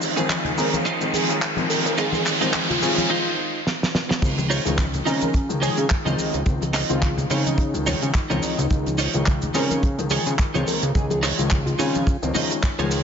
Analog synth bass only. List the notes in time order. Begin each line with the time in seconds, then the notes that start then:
Already playing: C#2
0.17 C#2
0.58 C#3
1.01 C#2
1.29 C#3
1.57 C#2
1.86 C#2
1.98 C#2
2.42 C#2
2.82 C#3
4.22 C#2
4.66 C#2
5.06 C#3
5.50 C#2
5.78 C#3
6.06 C#2
6.18 C#2
6.34 C#2
6.46 C#2
6.90 C#2
7.30 C#3
7.74 C#2
8.02 C#3
8.30 C#2
8.43 C#2
8.58 C#2
8.71 C#2
9.14 C#2
9.55 C#3
9.98 C#2
10.27 C#3
10.55 C#2
10.67 C#2
10.83 C#2
10.95 C#2
11.39 C#2
11.79 C#3
12.23 C#2
12.79 C#2